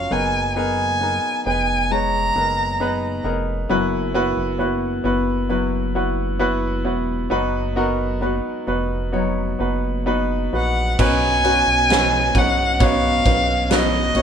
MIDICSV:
0, 0, Header, 1, 6, 480
1, 0, Start_track
1, 0, Tempo, 900901
1, 59, Time_signature, 4, 2, 24, 8
1, 3900, Tempo, 918836
1, 5820, Tempo, 903614
1, 7533, End_track
2, 0, Start_track
2, 0, Title_t, "Violin"
2, 0, Program_c, 0, 40
2, 0, Note_on_c, 0, 77, 83
2, 64, Note_on_c, 0, 80, 80
2, 72, Note_off_c, 0, 77, 0
2, 297, Note_off_c, 0, 80, 0
2, 300, Note_on_c, 0, 80, 84
2, 758, Note_off_c, 0, 80, 0
2, 782, Note_on_c, 0, 80, 81
2, 1022, Note_on_c, 0, 82, 85
2, 1030, Note_off_c, 0, 80, 0
2, 1734, Note_off_c, 0, 82, 0
2, 5594, Note_on_c, 0, 78, 71
2, 5810, Note_off_c, 0, 78, 0
2, 5833, Note_on_c, 0, 80, 110
2, 6556, Note_on_c, 0, 78, 92
2, 6564, Note_off_c, 0, 80, 0
2, 6799, Note_on_c, 0, 77, 100
2, 6807, Note_off_c, 0, 78, 0
2, 7272, Note_on_c, 0, 75, 94
2, 7280, Note_off_c, 0, 77, 0
2, 7533, Note_off_c, 0, 75, 0
2, 7533, End_track
3, 0, Start_track
3, 0, Title_t, "Grand piano"
3, 0, Program_c, 1, 0
3, 0, Control_c, 1, 64, 127
3, 0, Note_on_c, 1, 61, 56
3, 0, Note_on_c, 1, 65, 52
3, 0, Note_on_c, 1, 66, 55
3, 0, Note_on_c, 1, 68, 64
3, 0, Note_on_c, 1, 70, 80
3, 0, Note_on_c, 1, 73, 65
3, 58, Note_on_c, 1, 54, 50
3, 58, Note_on_c, 1, 63, 69
3, 59, Note_on_c, 1, 59, 75
3, 60, Note_off_c, 1, 68, 0
3, 60, Note_on_c, 1, 68, 66
3, 62, Note_off_c, 1, 70, 0
3, 62, Note_on_c, 1, 70, 84
3, 66, Control_c, 1, 64, 0
3, 67, Note_off_c, 1, 61, 0
3, 67, Note_off_c, 1, 65, 0
3, 68, Note_off_c, 1, 66, 0
3, 70, Note_off_c, 1, 73, 0
3, 168, Control_c, 1, 64, 127
3, 286, Note_off_c, 1, 59, 0
3, 286, Note_off_c, 1, 63, 0
3, 287, Note_off_c, 1, 68, 0
3, 288, Note_off_c, 1, 70, 0
3, 298, Note_on_c, 1, 59, 77
3, 299, Note_on_c, 1, 63, 69
3, 302, Note_on_c, 1, 68, 74
3, 305, Note_on_c, 1, 70, 87
3, 526, Note_off_c, 1, 59, 0
3, 527, Note_off_c, 1, 63, 0
3, 528, Note_off_c, 1, 68, 0
3, 530, Note_off_c, 1, 70, 0
3, 535, Note_on_c, 1, 59, 59
3, 537, Note_on_c, 1, 63, 52
3, 539, Note_on_c, 1, 68, 53
3, 542, Note_on_c, 1, 70, 62
3, 757, Note_off_c, 1, 54, 0
3, 765, Note_off_c, 1, 59, 0
3, 766, Note_off_c, 1, 63, 0
3, 767, Note_off_c, 1, 68, 0
3, 768, Note_off_c, 1, 70, 0
3, 778, Note_on_c, 1, 59, 63
3, 779, Note_on_c, 1, 63, 54
3, 781, Note_on_c, 1, 68, 55
3, 782, Note_on_c, 1, 71, 70
3, 1005, Note_off_c, 1, 59, 0
3, 1006, Note_off_c, 1, 63, 0
3, 1007, Note_off_c, 1, 68, 0
3, 1007, Note_off_c, 1, 71, 0
3, 1017, Note_on_c, 1, 59, 62
3, 1020, Note_on_c, 1, 63, 56
3, 1022, Note_on_c, 1, 68, 54
3, 1023, Note_on_c, 1, 73, 66
3, 1243, Note_off_c, 1, 59, 0
3, 1245, Note_off_c, 1, 63, 0
3, 1246, Note_off_c, 1, 68, 0
3, 1246, Note_off_c, 1, 73, 0
3, 1254, Note_on_c, 1, 59, 60
3, 1255, Note_on_c, 1, 63, 52
3, 1257, Note_on_c, 1, 68, 54
3, 1259, Note_on_c, 1, 70, 67
3, 1481, Note_off_c, 1, 59, 0
3, 1481, Note_off_c, 1, 63, 0
3, 1482, Note_off_c, 1, 68, 0
3, 1484, Note_off_c, 1, 70, 0
3, 1492, Note_on_c, 1, 59, 78
3, 1493, Note_on_c, 1, 63, 73
3, 1495, Note_on_c, 1, 68, 68
3, 1498, Note_on_c, 1, 71, 88
3, 1719, Note_off_c, 1, 59, 0
3, 1720, Note_off_c, 1, 63, 0
3, 1721, Note_off_c, 1, 68, 0
3, 1722, Note_off_c, 1, 71, 0
3, 1727, Note_on_c, 1, 59, 71
3, 1728, Note_on_c, 1, 63, 66
3, 1731, Note_on_c, 1, 68, 63
3, 1733, Note_on_c, 1, 70, 83
3, 1957, Note_off_c, 1, 59, 0
3, 1958, Note_off_c, 1, 63, 0
3, 1959, Note_off_c, 1, 68, 0
3, 1960, Note_off_c, 1, 70, 0
3, 1968, Note_on_c, 1, 59, 90
3, 1972, Note_on_c, 1, 54, 63
3, 1973, Note_on_c, 1, 64, 86
3, 1973, Note_on_c, 1, 66, 80
3, 1974, Note_on_c, 1, 71, 106
3, 1978, Control_c, 1, 64, 0
3, 2071, Control_c, 1, 64, 127
3, 2198, Note_off_c, 1, 59, 0
3, 2200, Note_off_c, 1, 64, 0
3, 2200, Note_off_c, 1, 66, 0
3, 2201, Note_off_c, 1, 71, 0
3, 2208, Note_on_c, 1, 59, 98
3, 2209, Note_on_c, 1, 64, 89
3, 2212, Note_on_c, 1, 66, 92
3, 2213, Note_on_c, 1, 71, 110
3, 2436, Note_off_c, 1, 59, 0
3, 2436, Note_off_c, 1, 64, 0
3, 2439, Note_off_c, 1, 66, 0
3, 2440, Note_off_c, 1, 71, 0
3, 2444, Note_on_c, 1, 59, 72
3, 2444, Note_on_c, 1, 64, 66
3, 2447, Note_on_c, 1, 66, 64
3, 2448, Note_on_c, 1, 71, 83
3, 2671, Note_off_c, 1, 54, 0
3, 2676, Note_off_c, 1, 59, 0
3, 2676, Note_off_c, 1, 64, 0
3, 2678, Note_off_c, 1, 66, 0
3, 2678, Note_off_c, 1, 71, 0
3, 2685, Note_on_c, 1, 59, 78
3, 2688, Note_on_c, 1, 64, 71
3, 2690, Note_on_c, 1, 66, 70
3, 2692, Note_on_c, 1, 71, 87
3, 2917, Note_off_c, 1, 59, 0
3, 2919, Note_off_c, 1, 64, 0
3, 2920, Note_off_c, 1, 66, 0
3, 2921, Note_off_c, 1, 71, 0
3, 2927, Note_on_c, 1, 59, 73
3, 2928, Note_on_c, 1, 64, 64
3, 2932, Note_on_c, 1, 66, 64
3, 2932, Note_on_c, 1, 71, 84
3, 3159, Note_off_c, 1, 59, 0
3, 3160, Note_off_c, 1, 64, 0
3, 3162, Note_off_c, 1, 66, 0
3, 3162, Note_off_c, 1, 71, 0
3, 3171, Note_on_c, 1, 59, 76
3, 3171, Note_on_c, 1, 64, 67
3, 3173, Note_on_c, 1, 66, 68
3, 3175, Note_on_c, 1, 71, 80
3, 3399, Note_off_c, 1, 59, 0
3, 3401, Note_off_c, 1, 64, 0
3, 3403, Note_off_c, 1, 66, 0
3, 3404, Note_off_c, 1, 71, 0
3, 3407, Note_on_c, 1, 59, 99
3, 3409, Note_on_c, 1, 64, 89
3, 3411, Note_on_c, 1, 66, 87
3, 3413, Note_on_c, 1, 71, 101
3, 3640, Note_off_c, 1, 59, 0
3, 3640, Note_off_c, 1, 64, 0
3, 3643, Note_off_c, 1, 66, 0
3, 3644, Note_off_c, 1, 71, 0
3, 3648, Note_on_c, 1, 59, 74
3, 3648, Note_on_c, 1, 64, 71
3, 3651, Note_on_c, 1, 66, 69
3, 3652, Note_on_c, 1, 71, 78
3, 3881, Note_off_c, 1, 59, 0
3, 3882, Note_off_c, 1, 64, 0
3, 3883, Note_off_c, 1, 66, 0
3, 3883, Note_off_c, 1, 71, 0
3, 3889, Note_on_c, 1, 59, 92
3, 3891, Note_on_c, 1, 63, 82
3, 3893, Note_on_c, 1, 54, 64
3, 3894, Note_on_c, 1, 66, 84
3, 3896, Note_on_c, 1, 71, 105
3, 3905, Control_c, 1, 64, 0
3, 4002, Control_c, 1, 64, 127
3, 4118, Note_off_c, 1, 59, 0
3, 4119, Note_off_c, 1, 63, 0
3, 4121, Note_off_c, 1, 66, 0
3, 4121, Note_off_c, 1, 71, 0
3, 4130, Note_on_c, 1, 59, 92
3, 4131, Note_on_c, 1, 63, 82
3, 4134, Note_on_c, 1, 66, 92
3, 4135, Note_on_c, 1, 70, 102
3, 4358, Note_off_c, 1, 59, 0
3, 4358, Note_off_c, 1, 63, 0
3, 4360, Note_off_c, 1, 66, 0
3, 4360, Note_off_c, 1, 70, 0
3, 4366, Note_on_c, 1, 59, 71
3, 4369, Note_on_c, 1, 63, 64
3, 4371, Note_on_c, 1, 66, 65
3, 4372, Note_on_c, 1, 71, 78
3, 4587, Note_off_c, 1, 54, 0
3, 4596, Note_off_c, 1, 59, 0
3, 4597, Note_off_c, 1, 63, 0
3, 4598, Note_off_c, 1, 66, 0
3, 4599, Note_off_c, 1, 71, 0
3, 4605, Note_on_c, 1, 59, 70
3, 4607, Note_on_c, 1, 63, 65
3, 4609, Note_on_c, 1, 66, 66
3, 4612, Note_on_c, 1, 71, 81
3, 4834, Note_off_c, 1, 59, 0
3, 4836, Note_off_c, 1, 63, 0
3, 4837, Note_off_c, 1, 66, 0
3, 4839, Note_off_c, 1, 71, 0
3, 4842, Note_on_c, 1, 59, 69
3, 4843, Note_on_c, 1, 63, 66
3, 4845, Note_on_c, 1, 66, 59
3, 4847, Note_on_c, 1, 73, 76
3, 5075, Note_off_c, 1, 59, 0
3, 5076, Note_off_c, 1, 63, 0
3, 5077, Note_off_c, 1, 66, 0
3, 5078, Note_off_c, 1, 73, 0
3, 5085, Note_on_c, 1, 59, 65
3, 5088, Note_on_c, 1, 63, 60
3, 5091, Note_on_c, 1, 66, 62
3, 5093, Note_on_c, 1, 71, 75
3, 5320, Note_off_c, 1, 59, 0
3, 5321, Note_off_c, 1, 63, 0
3, 5323, Note_off_c, 1, 66, 0
3, 5324, Note_off_c, 1, 71, 0
3, 5331, Note_on_c, 1, 59, 86
3, 5333, Note_on_c, 1, 63, 79
3, 5336, Note_on_c, 1, 66, 73
3, 5336, Note_on_c, 1, 71, 95
3, 5564, Note_off_c, 1, 59, 0
3, 5565, Note_off_c, 1, 63, 0
3, 5567, Note_off_c, 1, 66, 0
3, 5567, Note_off_c, 1, 71, 0
3, 5576, Note_on_c, 1, 59, 65
3, 5580, Note_on_c, 1, 63, 61
3, 5580, Note_on_c, 1, 66, 60
3, 5582, Note_on_c, 1, 71, 72
3, 5806, Note_off_c, 1, 59, 0
3, 5807, Note_off_c, 1, 63, 0
3, 5808, Note_off_c, 1, 66, 0
3, 5809, Note_off_c, 1, 71, 0
3, 5818, Note_on_c, 1, 59, 89
3, 5818, Note_on_c, 1, 61, 81
3, 5820, Note_on_c, 1, 63, 79
3, 5820, Note_on_c, 1, 66, 84
3, 5821, Note_on_c, 1, 71, 99
3, 5826, Control_c, 1, 64, 0
3, 5902, Control_c, 1, 64, 127
3, 6048, Note_off_c, 1, 59, 0
3, 6048, Note_off_c, 1, 61, 0
3, 6049, Note_off_c, 1, 63, 0
3, 6049, Note_off_c, 1, 66, 0
3, 6050, Note_off_c, 1, 71, 0
3, 6057, Note_on_c, 1, 59, 73
3, 6057, Note_on_c, 1, 61, 64
3, 6060, Note_on_c, 1, 63, 66
3, 6062, Note_on_c, 1, 66, 67
3, 6063, Note_on_c, 1, 71, 81
3, 6288, Note_off_c, 1, 59, 0
3, 6288, Note_off_c, 1, 61, 0
3, 6290, Note_off_c, 1, 63, 0
3, 6291, Note_off_c, 1, 66, 0
3, 6291, Note_off_c, 1, 71, 0
3, 6299, Note_on_c, 1, 59, 68
3, 6302, Note_on_c, 1, 61, 64
3, 6302, Note_on_c, 1, 63, 66
3, 6302, Note_on_c, 1, 66, 63
3, 6305, Note_on_c, 1, 71, 75
3, 6529, Note_off_c, 1, 59, 0
3, 6530, Note_off_c, 1, 61, 0
3, 6530, Note_off_c, 1, 63, 0
3, 6531, Note_off_c, 1, 66, 0
3, 6532, Note_off_c, 1, 71, 0
3, 6540, Note_on_c, 1, 59, 73
3, 6541, Note_on_c, 1, 61, 68
3, 6541, Note_on_c, 1, 63, 68
3, 6543, Note_on_c, 1, 66, 67
3, 6544, Note_on_c, 1, 71, 82
3, 6769, Note_off_c, 1, 59, 0
3, 6769, Note_off_c, 1, 61, 0
3, 6770, Note_off_c, 1, 63, 0
3, 6771, Note_off_c, 1, 66, 0
3, 6771, Note_off_c, 1, 71, 0
3, 6778, Note_on_c, 1, 59, 92
3, 6780, Note_on_c, 1, 61, 83
3, 6782, Note_on_c, 1, 63, 80
3, 6783, Note_on_c, 1, 66, 83
3, 6784, Note_on_c, 1, 73, 97
3, 7007, Note_off_c, 1, 59, 0
3, 7008, Note_off_c, 1, 61, 0
3, 7010, Note_off_c, 1, 63, 0
3, 7010, Note_off_c, 1, 66, 0
3, 7011, Note_off_c, 1, 73, 0
3, 7020, Note_on_c, 1, 59, 72
3, 7022, Note_on_c, 1, 61, 66
3, 7024, Note_on_c, 1, 63, 66
3, 7025, Note_on_c, 1, 66, 64
3, 7026, Note_on_c, 1, 71, 75
3, 7248, Note_off_c, 1, 59, 0
3, 7248, Note_off_c, 1, 61, 0
3, 7249, Note_off_c, 1, 63, 0
3, 7250, Note_off_c, 1, 66, 0
3, 7251, Note_off_c, 1, 71, 0
3, 7257, Note_on_c, 1, 59, 73
3, 7258, Note_on_c, 1, 61, 65
3, 7258, Note_on_c, 1, 63, 65
3, 7261, Note_on_c, 1, 66, 67
3, 7262, Note_on_c, 1, 71, 77
3, 7485, Note_off_c, 1, 59, 0
3, 7485, Note_off_c, 1, 61, 0
3, 7486, Note_off_c, 1, 63, 0
3, 7487, Note_off_c, 1, 66, 0
3, 7488, Note_off_c, 1, 71, 0
3, 7500, Note_on_c, 1, 59, 69
3, 7501, Note_on_c, 1, 61, 66
3, 7501, Note_on_c, 1, 63, 66
3, 7503, Note_on_c, 1, 66, 70
3, 7504, Note_on_c, 1, 73, 78
3, 7533, Note_off_c, 1, 59, 0
3, 7533, Note_off_c, 1, 61, 0
3, 7533, Note_off_c, 1, 63, 0
3, 7533, Note_off_c, 1, 66, 0
3, 7533, Note_off_c, 1, 73, 0
3, 7533, End_track
4, 0, Start_track
4, 0, Title_t, "Nylon-string guitar"
4, 0, Program_c, 2, 24
4, 0, Note_on_c, 2, 54, 53
4, 0, Note_on_c, 2, 65, 48
4, 107, Note_off_c, 2, 54, 0
4, 108, Note_off_c, 2, 65, 0
4, 538, Note_on_c, 2, 59, 50
4, 542, Note_on_c, 2, 63, 50
4, 545, Note_on_c, 2, 70, 53
4, 777, Note_off_c, 2, 59, 0
4, 779, Note_on_c, 2, 59, 50
4, 1016, Note_on_c, 2, 56, 52
4, 1486, Note_off_c, 2, 63, 0
4, 1492, Note_on_c, 2, 63, 53
4, 1968, Note_on_c, 2, 42, 68
4, 2019, Note_off_c, 2, 56, 0
4, 2019, Note_off_c, 2, 63, 0
4, 2022, Note_off_c, 2, 70, 0
4, 2449, Note_off_c, 2, 59, 0
4, 2451, Note_on_c, 2, 59, 53
4, 2454, Note_on_c, 2, 64, 52
4, 2457, Note_on_c, 2, 66, 57
4, 2689, Note_off_c, 2, 59, 0
4, 2692, Note_on_c, 2, 59, 53
4, 2929, Note_on_c, 2, 54, 59
4, 3407, Note_off_c, 2, 64, 0
4, 3414, Note_on_c, 2, 64, 53
4, 3897, Note_off_c, 2, 42, 0
4, 3944, Note_off_c, 2, 64, 0
4, 4205, Note_off_c, 2, 54, 0
4, 4206, Note_off_c, 2, 59, 0
4, 4209, Note_off_c, 2, 66, 0
4, 4369, Note_on_c, 2, 59, 48
4, 4373, Note_on_c, 2, 63, 47
4, 4376, Note_on_c, 2, 66, 56
4, 4605, Note_off_c, 2, 59, 0
4, 4607, Note_on_c, 2, 59, 47
4, 4848, Note_on_c, 2, 54, 56
4, 5333, Note_off_c, 2, 63, 0
4, 5335, Note_on_c, 2, 63, 48
4, 6056, Note_off_c, 2, 59, 0
4, 6058, Note_on_c, 2, 59, 57
4, 6059, Note_off_c, 2, 63, 0
4, 6061, Note_on_c, 2, 61, 59
4, 6063, Note_off_c, 2, 66, 0
4, 6065, Note_on_c, 2, 66, 62
4, 6296, Note_off_c, 2, 59, 0
4, 6302, Note_on_c, 2, 59, 57
4, 6691, Note_off_c, 2, 54, 0
4, 7253, Note_off_c, 2, 66, 0
4, 7259, Note_on_c, 2, 66, 67
4, 7494, Note_off_c, 2, 59, 0
4, 7500, Note_on_c, 2, 59, 60
4, 7533, Note_off_c, 2, 59, 0
4, 7533, Note_off_c, 2, 61, 0
4, 7533, Note_off_c, 2, 66, 0
4, 7533, End_track
5, 0, Start_track
5, 0, Title_t, "Analog synth bass"
5, 0, Program_c, 3, 38
5, 57, Note_on_c, 3, 30, 89
5, 637, Note_off_c, 3, 30, 0
5, 777, Note_on_c, 3, 29, 75
5, 1233, Note_off_c, 3, 29, 0
5, 1252, Note_on_c, 3, 30, 78
5, 1709, Note_off_c, 3, 30, 0
5, 1726, Note_on_c, 3, 29, 85
5, 1952, Note_off_c, 3, 29, 0
5, 1968, Note_on_c, 3, 30, 99
5, 2308, Note_off_c, 3, 30, 0
5, 2326, Note_on_c, 3, 30, 80
5, 2668, Note_off_c, 3, 30, 0
5, 2686, Note_on_c, 3, 30, 79
5, 3653, Note_on_c, 3, 28, 82
5, 3661, Note_off_c, 3, 30, 0
5, 3879, Note_off_c, 3, 28, 0
5, 3893, Note_on_c, 3, 30, 94
5, 4468, Note_off_c, 3, 30, 0
5, 4608, Note_on_c, 3, 29, 73
5, 5069, Note_off_c, 3, 29, 0
5, 5089, Note_on_c, 3, 30, 90
5, 5556, Note_off_c, 3, 30, 0
5, 5576, Note_on_c, 3, 34, 86
5, 5801, Note_off_c, 3, 34, 0
5, 5817, Note_on_c, 3, 35, 106
5, 6159, Note_off_c, 3, 35, 0
5, 6177, Note_on_c, 3, 35, 97
5, 6519, Note_off_c, 3, 35, 0
5, 6539, Note_on_c, 3, 35, 87
5, 6999, Note_off_c, 3, 35, 0
5, 7020, Note_on_c, 3, 35, 93
5, 7477, Note_off_c, 3, 35, 0
5, 7495, Note_on_c, 3, 34, 82
5, 7533, Note_off_c, 3, 34, 0
5, 7533, End_track
6, 0, Start_track
6, 0, Title_t, "Drums"
6, 5817, Note_on_c, 9, 36, 100
6, 5817, Note_on_c, 9, 49, 88
6, 5870, Note_off_c, 9, 36, 0
6, 5870, Note_off_c, 9, 49, 0
6, 6059, Note_on_c, 9, 51, 63
6, 6112, Note_off_c, 9, 51, 0
6, 6301, Note_on_c, 9, 51, 74
6, 6308, Note_on_c, 9, 38, 102
6, 6354, Note_off_c, 9, 51, 0
6, 6361, Note_off_c, 9, 38, 0
6, 6539, Note_on_c, 9, 36, 88
6, 6540, Note_on_c, 9, 51, 63
6, 6592, Note_off_c, 9, 36, 0
6, 6593, Note_off_c, 9, 51, 0
6, 6780, Note_on_c, 9, 51, 75
6, 6781, Note_on_c, 9, 36, 100
6, 6833, Note_off_c, 9, 51, 0
6, 6834, Note_off_c, 9, 36, 0
6, 7020, Note_on_c, 9, 51, 60
6, 7021, Note_on_c, 9, 36, 90
6, 7073, Note_off_c, 9, 51, 0
6, 7074, Note_off_c, 9, 36, 0
6, 7260, Note_on_c, 9, 51, 79
6, 7263, Note_on_c, 9, 38, 111
6, 7313, Note_off_c, 9, 51, 0
6, 7316, Note_off_c, 9, 38, 0
6, 7494, Note_on_c, 9, 51, 58
6, 7533, Note_off_c, 9, 51, 0
6, 7533, End_track
0, 0, End_of_file